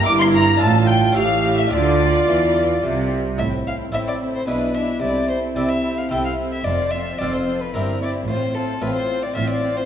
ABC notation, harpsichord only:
X:1
M:3/4
L:1/8
Q:1/4=110
K:Dm
V:1 name="Harpsichord"
[B,EB]2 [DFA]2 [^CGA]2 | [DFA]6 | [K:Am] z2 [CEA]2 [DE^G]2 | z2 [CEA]2 [CEA]2 |
z2 [CFA]2 [CEG]2 | z2 [CF]2 [CF]2 |]
V:2 name="Harpsichord" clef=bass
G,,2 A,,2 A,,2 | D,2 E,2 C,2 | [K:Am] A,,2 A,,2 B,,2 | C,2 C,2 C,2 |
F,,2 F,,2 G,,2 | A,,2 A,,2 A,,2 |]